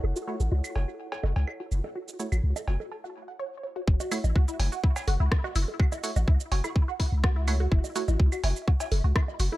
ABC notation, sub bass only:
X:1
M:4/4
L:1/16
Q:1/4=125
K:F#m
V:1 name="Sub bass" clef=bass
F,,, z2 A,,, C,, z F,,, z3 F,,, C,, z2 F,,, z | z3 A,,, C,, z F,,, z8 z | F,,, z2 A,,, C,, z F,,, z3 F,,, C,, z2 F,,, z | z3 A,,, C,, z F,,, z4 C,,4- C,, |
F,,, z2 A,,, C,, z F,,, z3 F,,, C,, z2 F,,, z |]